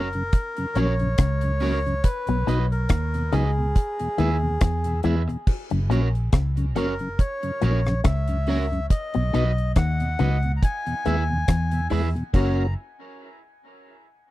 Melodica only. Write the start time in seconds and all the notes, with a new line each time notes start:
Already playing: A#4
0.75 C#5
2.04 B4
2.72 A#4
3.33 G#4
6.77 A#4
7.19 C#5
8.04 E5
8.91 D#5
9.77 F#5
10.57 A#5
10.64 G#5
12.35 A#5